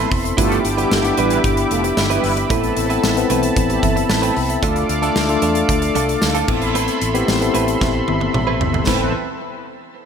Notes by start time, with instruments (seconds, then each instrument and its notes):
Already playing: tine electric piano B3 C4 E4 A4, clean electric guitar E4 B4, analog synth pad A4 E5 B5 C6
0.11 fingered electric bass F1, muted clean electric guitar stroke, kick, open hi-hat
0.24 muted clean electric guitar stroke, closed hi-hat
0.37 fingered electric bass G1, clean electric guitar G3 D4 E4 B4, analog polysynth A3 F4 A4, tine electric piano B3 D4 E4 G4, analog synth pad G4 D6, kick, closed hi-hat
0.52 closed hi-hat
0.64 fingered electric bass G1, muted clean electric guitar stroke, closed hi-hat
0.77 analog polysynth E3 D4 G4, clean electric guitar G3 D4 E4 B4, tine electric piano B3 D4 E4 G4, closed hi-hat
0.91 fingered electric bass G1, analog polysynth A3 F4 A4, snare, tambourine
1.04 tine electric piano B3 D4 E4 G4, muted clean electric guitar stroke, closed hi-hat
1.17 fingered electric bass A1, clean electric guitar G3 D4 E4 B4, analog polysynth G3 E4 B4, closed hi-hat
1.30 muted clean electric guitar stroke, closed hi-hat
1.44 fingered electric bass G1, muted clean electric guitar stroke, kick, closed hi-hat
1.57 muted clean electric guitar stroke, closed hi-hat
1.71 fingered electric bass F1, analog polysynth A3 F4 A4, closed hi-hat
1.84 muted clean electric guitar stroke, closed hi-hat
1.97 fingered electric bass G1, muted clean electric guitar stroke, snare, tambourine
2.10 analog polysynth G3 E4 B4, clean electric guitar G3 D4 E4 B4, closed hi-hat
2.24 fingered electric bass G1, open hi-hat
2.37 muted clean electric guitar stroke, closed hi-hat
2.50 fingered electric bass A1, clean electric guitar A3 C4 E4 B4, analog polysynth A3 E4 C5, tine electric piano B3 C4 E4 A4, analog synth pad A4 A5, kick, closed hi-hat
2.64 closed hi-hat
2.77 fingered electric bass A1, analog polysynth E3 C4 A4, muted clean electric guitar stroke, closed hi-hat
2.90 clean electric guitar A3 C4 E4 B4, tine electric piano B3 C4 E4 A4, closed hi-hat
3.03 fingered electric bass A1, muted clean electric guitar stroke, snare, tambourine
3.16 tine electric piano B3 C4 E4 B4, muted clean electric guitar stroke, closed hi-hat
3.30 fingered electric bass B1, analog polysynth E3 C4 B4, clean electric guitar A3 C4 E4 B4, closed hi-hat
3.43 muted clean electric guitar stroke, closed hi-hat
3.56 fingered electric bass A1, muted clean electric guitar stroke, kick, closed hi-hat
3.70 analog polysynth G3 E4 G4, muted clean electric guitar stroke, closed hi-hat
3.83 fingered electric bass G1, analog polysynth E3 C4 A4, tine electric piano E5, kick, closed hi-hat
3.96 muted clean electric guitar stroke, closed hi-hat
4.09 fingered electric bass A1, tine electric piano A5, muted clean electric guitar stroke, snare, tambourine
4.22 clean electric guitar A3 C4 E4 B4, tine electric piano G5, closed hi-hat
4.36 fingered electric bass C2, tine electric piano B5, muted clean electric guitar stroke, open hi-hat
4.49 tine electric piano E5, muted clean electric guitar stroke, closed hi-hat
4.62 fingered electric bass D2, clean electric guitar A3 D4 F4 A4, tine electric piano A3 D4 F4 A4, analog synth pad D5 F5 D6, kick, closed hi-hat
4.76 closed hi-hat
4.89 fingered electric bass D2, muted clean electric guitar stroke, closed hi-hat
5.02 tine electric piano A3 D4 F4 A4, clean electric guitar A3 D4 F4 A4, closed hi-hat
5.16 fingered electric bass D2, snare, tambourine
5.29 tine electric piano A3 D4 F4 A4, muted clean electric guitar stroke, closed hi-hat
5.42 fingered electric bass E2, clean electric guitar A3 D4 F4 A4, closed hi-hat
5.55 muted clean electric guitar stroke, closed hi-hat
5.69 fingered electric bass D2, muted clean electric guitar stroke, kick, closed hi-hat
5.82 muted clean electric guitar stroke, closed hi-hat
5.95 fingered electric bass C2, clean electric guitar A3 D4 F4 A4, closed hi-hat
6.09 muted clean electric guitar stroke, closed hi-hat
6.22 fingered electric bass D2, muted clean electric guitar stroke, snare, tambourine
6.35 clean electric guitar A3 D4 F4 A4, closed hi-hat
6.48 fingered electric bass A1, tine electric piano B3 C4 E4 A4, analog synth pad E5 B5 C6, kick, crash
6.62 muted clean electric guitar stroke, closed hi-hat
6.75 clean electric guitar A3 C4 E4 B4, closed hi-hat
6.88 closed hi-hat
7.01 fingered electric bass A1, muted clean electric guitar stroke, closed hi-hat
7.14 clean electric guitar A3 C4 E4 B4, tine electric piano B3 C4 E4 G4, closed hi-hat
7.28 fingered electric bass A1, muted clean electric guitar stroke, snare, tambourine
7.41 tine electric piano B3 C4 E4 A4, muted clean electric guitar stroke, closed hi-hat
7.54 fingered electric bass A1, clean electric guitar A3 C4 E4 B4, closed hi-hat
7.68 muted clean electric guitar stroke, closed hi-hat
7.81 fingered electric bass A1, muted clean electric guitar stroke, kick, snare
7.94 muted clean electric guitar stroke
8.08 fingered electric bass G1, high tom
8.21 muted clean electric guitar stroke, high tom
8.33 fingered electric bass A1, muted clean electric guitar stroke, mid tom
8.47 clean electric guitar A3 C4 E4 B4
8.60 fingered electric bass G1, muted clean electric guitar stroke, floor tom
8.73 muted clean electric guitar stroke, floor tom
8.87 fingered electric bass A1, analog polysynth E3 C4 B4, clean electric guitar A3 C4 E4 B4, tine electric piano B3 C4 E4 A4, analog synth pad C4 A4 B4 E5, kick, snare, crash